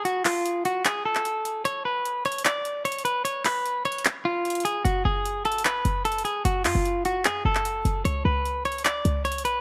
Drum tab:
HH |x-----------o-----------x-----------x-----------x-----------------------x-----------x-----------|x-----------------------x-----------x---x---x---x-----------x-----------x---x---x---x-----------|x-----------o-----------x-----------x---x---x---x-----------------------x--x--x--x--x-----------|x-----------------------x-----------x---x---x---x-----------x-----------x---x---x---x-----------|
CP |------------x-----------------------------------x-----------------x-----------------------------|------------------------------------------------x-----------------------------------------------|------------x-----------------------------------x-----------------------------------------------|------------------------------------------------x-----------------------------------------------|

HH |x-----------o-----------x-----------x-----------x-----------------------x-----------x-----------|x-----------------------x-----------x---x---x---x-----------x-----------x---x---x---x-----------|
CP |------------x-----------------------------------x-----------------x-----------------------------|------------------------------------------------x-----------------------------------------------|